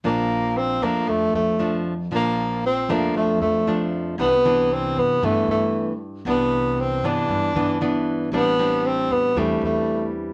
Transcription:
0.04 A#1 A#2 F3 A#3 D4
0.58 C4
0.82 F2 F3 A3 A#3 D4
1.07 F2 A3
1.33 F2 A3
1.59 F3 A3 D4
2.11 A#1 A#2 F3 D4
2.15 A#3
2.66 C4
2.88 F2 F3 A3 A#3 D4
3.14 F2 A3
3.40 F2 A3
3.67 F3 A3 D4
4.18 C2 C3 E3 B3 D4
4.45 E3 B3 D4
4.73 C4
4.96 G2 B3
5.22 G2 E3 A3 B3 D4
5.47 G2 A3
6.25 C2 C3 E3 B3 D4
6.30 B3
6.80 C4
7.02 G2 E3 B3 D4
7.06 D4
7.28 G2
7.54 G2 E3 B3 D4
7.81 E3 B3 D4
8.32 A1 A2 G3 B3 C4 D4
8.59 G3 C4 D4
8.87 C4
9.09 E2 B3
9.35 E2 E3 G3 A3 C4 D4
9.61 E2 A3

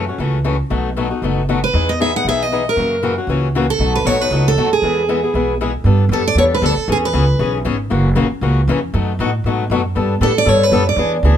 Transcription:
0.08 A3 C#4 F#4
0.18 C#2 C#3 E3 A3 C#4 F#4
0.44 C#3 E3 A3 C#4 F#4
0.70 B1 B2 F#3 A3 D#4 F#4
0.97 B2 F#3 A3 D#4 F#4
1.10 A3 D#4 F#4
1.22 F#1 B2 F#3 A3 D#4 F#4
1.49 B2 F#3 A3 D#4 F#4
1.64 B4
1.74 E2 E3 B3 D#4 G#4
1.89 D#5
2.00 E3 B3 D#4 G#4 E5
2.16 B3 D#4 G#4 F#5
2.25 B1 E3 B3 D#4 G#4
2.29 E5
2.42 D#5
2.52 E3 B3 D#4 G#4
2.69 A#4
2.76 F#2 C#3 E3 A#3 C#4 F#4
3.03 C#3 E3 A#3 C#4 F#4
3.18 A#3 C#4 F#4
3.27 C#2 C#3 E3 A#3 C#4 F#4
3.55 C#3 E3 A#3 C#4 F#4
3.70 A4
3.79 B1 B2 F#3 A3 D#4 F#4
3.95 B4
4.05 B1 B2 F#3 A3 D#4 F#4 C#5
4.21 A3 D#4 F#4 B4
4.30 C#2 B2 F#3 A3 D#4 F#4
4.48 A4
4.56 D#2 B2 F#3 A3 D#4 F#4
4.73 G#4
4.82 E2 E3 G#3 B3 E4 G#4
5.09 E3 G#3 B3 E4 G#4
5.24 B3 E4 G#4
5.34 B1 E3 G#3 B3 E4 G#4
5.61 E3 G#3 B3 E4 G#4
5.84 G2 G3 B3 D4 A4
6.09 F#2 G3 B3 D4 A4
6.13 A4
6.27 D5
6.35 E2 G3 B3 D4 A4 C#5
6.54 B4
6.62 D2 G3 B3 D4 A4
6.77 muted upright bass stroke
6.88 E2 E3 B3 C#4 G#4
6.92 G#4
7.05 B4
7.13 C#2 E3 B3 C#4 G#4
7.39 B1 E3 B3 C#4 G#4
7.65 G#1 E3 B3 C#4 G#4
7.90 F#1 C#3 E3 A#3 C#4 F#4
8.15 A#1 C#3 E3 A#3 C#4 F#4
8.30 muted upright bass stroke
8.41 C#2 C#3 E3 A#3 C#4 F#4
8.68 F2 C#3 E3 A#3 C#4 F#4
8.94 F#2 B2 F#3 A3 D#4 F#4
9.19 A2 B2 F#3 A3 D#4 F#4
9.44 G#2 B2 F#3 A3 D#4 F#4
9.70 F#2 B2 F#3 A3 D#4 F#4
9.95 G2 G3 B3 D4 A4
10.21 A2 G3 B3 D4 A4
10.38 D5
10.45 G2 G3 B3 D4 A4 C#5
10.63 B4
10.71 F#2 G3 B3 D4 A4
10.89 D5
10.96 E2 E3 B3 D4 G#4
11.23 D2 E3 B3 D4 G#4

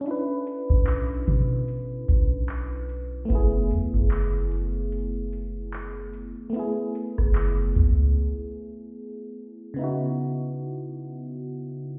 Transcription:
0.01 C#4 D4
0.06 E4, closed hi-hat
0.11 B4
0.47 closed hi-hat
0.70 B1, kick
0.86 clap, closed hi-hat
1.27 B2, kick, closed hi-hat
1.68 closed hi-hat
2.08 B1, kick, closed hi-hat
2.49 clap, closed hi-hat
2.89 closed hi-hat
3.25 A3 B3
3.30 F#1 E4, kick, closed hi-hat
3.35 G#4
3.71 F#2, closed hi-hat
3.94 F#1, kick
4.11 clap, closed hi-hat
4.51 closed hi-hat
4.92 closed hi-hat
5.33 closed hi-hat
5.73 clap, closed hi-hat
6.13 closed hi-hat
6.50 A3 B3
6.54 E4, closed hi-hat
6.59 G#4
6.95 closed hi-hat
7.18 F#1, kick, cross-stick
7.35 clap, closed hi-hat
7.76 C#2, kick, closed hi-hat
9.74 C#3 B3
9.79 D#4 E4
9.84 F#4

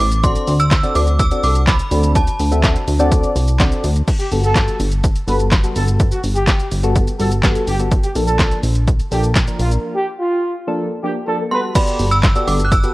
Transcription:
0.00 A1 D6, open hi-hat, shaker
0.12 closed hi-hat, shaker
0.23 C4 D4 F#4 A4 D5 C6, kick, closed hi-hat, shaker
0.36 closed hi-hat, shaker
0.48 D2, open hi-hat, shaker
0.60 E6, closed hi-hat, shaker
0.71 kick, snare, clap, closed hi-hat, shaker
0.83 C4 D4 F#4 A4 D5, closed hi-hat, shaker
0.96 D2 D6, open hi-hat, shaker
1.07 closed hi-hat, shaker
1.20 E6, kick, closed hi-hat, shaker
1.31 C4 D4 F#4 A4 D5, closed hi-hat, shaker
1.44 C2 D6, open hi-hat, shaker
1.55 closed hi-hat, shaker
1.67 B5, kick, snare, clap, closed hi-hat, shaker
1.80 closed hi-hat, shaker
1.91 D2 C4 D4 F#4 A4 D5, open hi-hat, shaker
2.04 closed hi-hat, shaker
2.16 A5, kick, closed hi-hat, shaker
2.28 closed hi-hat, shaker
2.40 D2, open hi-hat, shaker
2.51 C4 D4 F#4 A4 E5, closed hi-hat, shaker
2.63 kick, snare, clap, closed hi-hat, shaker
2.76 closed hi-hat, shaker
2.88 D2, open hi-hat, shaker
2.99 C4 D4 F#4 A4 D5, closed hi-hat, shaker
3.12 kick, closed hi-hat, shaker
3.23 closed hi-hat, shaker
3.36 C2, open hi-hat, shaker
3.47 closed hi-hat, shaker
3.59 C4 D4 F#4 A4 D5, kick, snare, clap, closed hi-hat, shaker
3.72 closed hi-hat, shaker
3.84 D2, open hi-hat, shaker
3.96 closed hi-hat, shaker
4.08 kick, closed hi-hat, crash, shaker
4.20 G4, closed hi-hat, shaker
4.31 G1 G3 B3 F#4 A4, open hi-hat, shaker
4.43 A4, closed hi-hat, shaker
4.55 kick, snare, clap, closed hi-hat, shaker
4.68 closed hi-hat, shaker
4.80 G1, open hi-hat, shaker
4.91 closed hi-hat, shaker
5.04 kick, closed hi-hat, shaker
5.15 closed hi-hat, shaker
5.27 G1 G3 B3 F#4 A4 B4, open hi-hat, shaker
5.39 closed hi-hat, shaker
5.51 kick, snare, clap, closed hi-hat, shaker
5.63 G3 B3 F#4 A4, closed hi-hat, shaker
5.75 G1 A4, open hi-hat, shaker
5.87 closed hi-hat, shaker
6.00 kick, closed hi-hat, shaker
6.11 F#4, closed hi-hat, shaker
6.24 G1, open hi-hat, shaker
6.35 G4, closed hi-hat, shaker
6.47 kick, snare, clap, closed hi-hat, shaker
6.60 closed hi-hat, shaker
6.72 G1, open hi-hat, shaker
6.83 G3 B3 F#4 A4, closed hi-hat, shaker
6.96 kick, closed hi-hat, shaker
7.07 closed hi-hat, shaker
7.19 G1 G3 B3 F#4 A4, open hi-hat, shaker
7.31 closed hi-hat, shaker
7.43 G3 B3 F#4 A4, kick, snare, clap, closed hi-hat, shaker
7.55 closed hi-hat, shaker
7.67 G1 G4, open hi-hat, shaker
7.79 G3 B3 F#4 A4, closed hi-hat, shaker
7.92 kick, closed hi-hat, shaker
8.03 G4, closed hi-hat, shaker
8.15 A#1 F3 A#3 D4 A4, open hi-hat, shaker
8.28 A4, closed hi-hat, shaker
8.39 kick, snare, clap, closed hi-hat, shaker
8.52 closed hi-hat, shaker
8.63 A#1, open hi-hat, shaker
8.75 closed hi-hat, shaker
8.88 kick, closed hi-hat, shaker
8.99 closed hi-hat, shaker
9.11 A#1 F3 A#3 D4 G4 A4, open hi-hat, shaker
9.23 closed hi-hat, shaker
9.35 kick, snare, clap, closed hi-hat, shaker
9.47 F3 A#3 D4 A#4, closed hi-hat, shaker
9.59 A#1 F4, open hi-hat, shaker
9.72 closed hi-hat, shaker
9.95 G4
10.20 F4
10.67 F3 A#3 D4 A4
11.03 F3 A#3 D4 G4
11.27 F3 A#3 D4 A4
11.52 G3 B3 F#4 A4 B4 C6
11.75 B3 F#4 G4 A4 D5 B5, kick, closed hi-hat, crash, shaker
11.87 closed hi-hat, shaker
11.99 G1, open hi-hat, shaker
12.11 E6, closed hi-hat, shaker
12.23 kick, snare, clap, closed hi-hat, shaker
12.35 B3 F#4 G4 A4 D5, closed hi-hat, shaker
12.47 G1 D6, open hi-hat, shaker
12.59 closed hi-hat, shaker
12.65 F#6
12.72 E6, kick, closed hi-hat, shaker
12.83 B3 F#4 G4 A4 B4, closed hi-hat, shaker

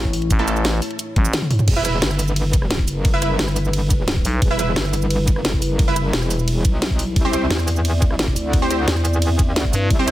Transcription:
Already playing: A1 A3 E4 C#5
0.05 kick
0.13 open hi-hat
0.22 closed hi-hat
0.31 A1, kick, closed hi-hat, shaker
0.39 A3 E4 A4, closed hi-hat
0.48 A3 E4 A4, cross-stick, closed hi-hat, shaker
0.56 shaker
0.65 snare, closed hi-hat, shaker
0.73 cross-stick
0.82 open hi-hat, shaker
0.91 closed hi-hat
0.99 closed hi-hat, shaker
1.16 A1, kick, closed hi-hat, high tom
1.25 shaker
1.33 snare, closed hi-hat, mid tom, shaker
1.42 mid tom
1.51 mid tom, open hi-hat
1.59 closed hi-hat, mid tom, shaker
1.68 E1 G3 E4 B4, kick, closed hi-hat, ride, crash
1.76 E4 B4 E5
1.85 E4 B4 E5, cross-stick, closed hi-hat, shaker
2.02 G1, snare, closed hi-hat, ride
2.11 cross-stick, shaker
2.19 open hi-hat, shaker
2.28 shaker
2.36 closed hi-hat, ride
2.53 kick, closed hi-hat, shaker
2.62 cross-stick
2.71 snare, closed hi-hat, ride
2.79 kick
2.88 F#1, open hi-hat, shaker
3.05 kick, closed hi-hat, ride
3.13 E4 B4 E5
3.22 E4 B4 E5, cross-stick, closed hi-hat, shaker
3.39 G1, snare, closed hi-hat, ride
3.48 cross-stick, shaker
3.56 open hi-hat, shaker
3.65 shaker
3.73 closed hi-hat, ride
3.91 kick, closed hi-hat, shaker
4.08 snare, closed hi-hat, ride
4.16 kick
4.25 B1, open hi-hat, shaker
4.42 E1, kick, closed hi-hat, ride
4.51 E4 B4 E5
4.59 E4 B4 E5, cross-stick, closed hi-hat, shaker
4.76 G1, snare, closed hi-hat, ride
4.85 cross-stick, shaker
4.93 open hi-hat, shaker
5.02 shaker
5.11 closed hi-hat, ride
5.28 kick, closed hi-hat, shaker
5.36 F#1, cross-stick
5.45 snare, closed hi-hat, ride
5.53 kick
5.62 F#1, open hi-hat, shaker
5.79 kick, closed hi-hat, ride
5.88 E4 B4 E5
5.96 cross-stick, closed hi-hat, shaker
6.13 E1, snare, closed hi-hat, ride
6.22 cross-stick, shaker
6.31 open hi-hat, shaker
6.39 shaker
6.48 closed hi-hat, ride
6.65 B1, kick, closed hi-hat, shaker
6.82 snare, closed hi-hat, ride
6.91 kick
6.99 open hi-hat, shaker
7.16 C2 C4 D5, kick, closed hi-hat, ride
7.25 C4 G4 C5
7.33 C4 G4 C5, cross-stick, closed hi-hat, shaker
7.50 E2, snare, closed hi-hat, ride
7.59 cross-stick, shaker
7.68 open hi-hat, shaker
7.76 shaker
7.85 closed hi-hat, ride
8.02 kick, closed hi-hat, shaker
8.11 cross-stick
8.19 snare, closed hi-hat, ride
8.28 kick
8.36 D2, open hi-hat, shaker
8.53 kick, closed hi-hat, ride
8.62 C4 G4 C5
8.71 C4 G4 C5, cross-stick, closed hi-hat, shaker
8.88 E2, snare, closed hi-hat, ride
8.96 cross-stick, shaker
9.05 open hi-hat, shaker
9.13 shaker
9.22 closed hi-hat, ride
9.39 kick, closed hi-hat, shaker
9.48 D#2
9.56 snare, closed hi-hat, ride
9.65 kick
9.73 G2, open hi-hat, shaker
9.90 C2, kick, closed hi-hat, ride
9.99 C4 G4 C5
10.08 C4 G4 C5, cross-stick, closed hi-hat, shaker

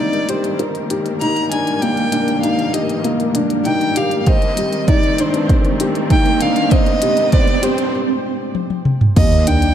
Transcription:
Already playing: D#3 G3 A#3 C4 D4 A#4, riser
0.00 D#4 D5
0.13 closed hi-hat
0.29 G4 C5, closed hi-hat
0.44 G2, closed hi-hat
0.59 A#4, closed hi-hat
0.75 closed hi-hat
0.90 D#2 G4, closed hi-hat
1.06 closed hi-hat
1.21 D#4 A#5, closed hi-hat
1.36 closed hi-hat
1.52 D4 G#5, closed hi-hat
1.67 closed hi-hat
1.82 A#3 G5, closed hi-hat
1.97 closed hi-hat
2.12 D4, closed hi-hat
2.27 D#2, closed hi-hat
2.43 D#4 F5, closed hi-hat
2.59 closed hi-hat
2.73 G4 D#5, closed hi-hat
2.89 G2, closed hi-hat
3.04 A#3, closed hi-hat
3.20 closed hi-hat
3.35 D4, closed hi-hat
3.50 closed hi-hat
3.65 D#4 G5, closed hi-hat
3.81 closed hi-hat
3.96 G4 F5, closed hi-hat
4.11 closed hi-hat
4.20 F5
4.26 D#2 D#3 C5 D#5, kick, closed hi-hat
4.42 closed hi-hat
4.46 C4
4.57 G4, closed hi-hat
4.73 closed hi-hat
4.88 D#4 D5, kick, closed hi-hat
5.03 closed hi-hat
5.18 D4 C5, closed hi-hat
5.34 G2, closed hi-hat
5.49 C5, kick, closed hi-hat
5.65 closed hi-hat
5.80 D#2 G4, closed hi-hat
5.95 closed hi-hat
6.10 D#4 G5, kick, closed hi-hat
6.26 closed hi-hat
6.41 D4 F5, closed hi-hat
6.56 closed hi-hat
6.71 C5 D#5, kick, closed hi-hat
6.86 closed hi-hat
7.02 G4, closed hi-hat
7.17 D#2, closed hi-hat
7.32 C5 D5, kick, closed hi-hat
7.47 closed hi-hat
7.63 G4 C5, closed hi-hat
7.78 G2, closed hi-hat
8.55 high tom
8.70 high tom
8.85 mid tom
9.01 mid tom
9.16 D#2 A#3 D#5, kick, closed hi-hat, crash, sub drop
9.32 closed hi-hat
9.42 A#3
9.47 D4 G5, closed hi-hat
9.62 closed hi-hat

